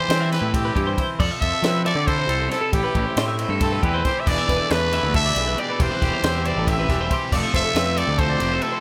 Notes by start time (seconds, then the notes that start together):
Already playing: E3 E4 G4 C5
0.09 E3 G3 C4 C5, snare, ride
0.20 E5
0.32 E4 B4 C5, snare, ride
0.42 A2 A4
0.54 C4 G4, kick, ride
0.65 B4
0.75 G2 E3 E4 G4, kick, ride
0.87 C5
0.98 E4 C5, kick, ride
1.19 F2 F3 A4 D5, kick, crash
1.31 E5
1.41 F2 A4 C5 E5, kick, ride
1.53 A4
1.62 F3 C4 E4 B4, snare, ride
1.85 A4 D5 E5, ride
1.95 D3 D5
2.07 E4 A4 C5, kick, ride
2.18 C5
2.28 C2 C3 A4, ride
2.40 A4
2.49 E4 A4 C5, snare, ride
2.61 A4
2.72 A1 A2 E4 G4, kick, ride
2.84 B4
2.95 A1 E4, kick, ride
3.06 C5
3.16 A2 A3 C4 C5, snare, ride
3.28 E5
3.39 E4 C5, ride
3.49 G2 A4
3.61 C4 A4, kick, ride
3.72 B4
3.83 E2 E3 E4 G4 B4, kick, ride
3.94 C5
4.05 G4 C5, kick, snare, ride
4.20 E5
4.26 E1 E3 B3 D4 E4 G#4 D5, kick, crash
4.38 E5
4.47 E1 B3 D4 G#4 B4, kick, snare, ride
4.61 A4
4.70 E2 E3 A3 B3 D4 G#4 B4, snare, ride
4.93 E4 E5, ride
5.03 D2 D5
5.13 E3 B3 D4 G#4 A4 E5, kick, ride
5.17 D4
5.26 D5
5.36 B1 B2 B3 D4 E4 G#4, ride
5.48 B4
5.57 E3 B3 D4 G4 G#4 D5, ride
5.70 A4 B4
5.80 E1 E3 G3 C4 D4 G4 C5, kick, ride
5.91 E4 B4
6.01 E1 G3 C4 G4, kick, snare, ride
6.14 C5
6.23 E2 E3 G3 C4 G4 C5, snare, ride
6.35 E5
6.45 E4 C5 D5, ride
6.56 A1 A4
6.66 E3 G3 C4 G4 E5, kick, ride
6.80 B4
6.89 E1 E3 G3 C4 D4 G4, kick, snare, ride
7.00 E4 C5
7.11 E3 G3 C4 G4 C5, kick, ride
7.32 F1 F3 A3 C4 F4 A4 D5, kick, crash
7.43 E5
7.54 F1 A3 C4 F4 A4 C5 E5, kick, snare, ride
7.65 A4
7.74 F2 F3 A3 C4 B4, snare, ride
7.78 C4 F4
7.97 A4 D5 E5, ride
8.07 D2 D5
8.18 F3 A3 C4 F4 A4 C5, kick, ride
8.29 D5
8.40 F1 C3 A3 C4 F4 G4, ride
8.52 A4 C5
8.62 F3 A3 C4 E4 F4 A4 E5, ride
8.72 C5